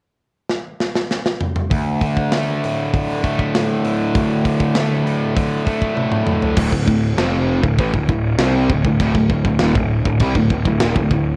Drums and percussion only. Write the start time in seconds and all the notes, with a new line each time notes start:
0.49 snare
0.80 snare
0.95 snare
1.11 snare
1.26 snare
1.40 mid tom
1.56 mid tom
1.71 kick, open hi-hat
2.01 kick, open hi-hat
2.17 kick
2.32 snare, open hi-hat
2.64 open hi-hat
2.94 kick, open hi-hat
3.24 kick, open hi-hat
3.39 kick
3.55 snare, open hi-hat
3.85 open hi-hat
4.15 kick, open hi-hat
4.45 kick, open hi-hat
4.60 kick
4.75 snare, open hi-hat
5.07 open hi-hat
5.37 kick, open hi-hat
5.67 kick, open hi-hat
5.82 kick
5.97 high tom
6.12 mid tom
6.27 mid tom
6.42 floor tom
6.57 kick, crash
6.72 kick
6.88 kick
7.18 snare, crash
7.63 kick
7.78 kick, crash
7.94 kick
8.09 kick
8.39 snare, crash
8.70 kick
8.85 kick
9.00 kick, crash
9.15 kick
9.30 kick
9.45 kick
9.59 snare, crash
9.75 kick
10.05 kick
10.19 kick, crash
10.35 kick
10.50 kick
10.65 kick
10.80 snare, crash
10.96 kick
11.11 kick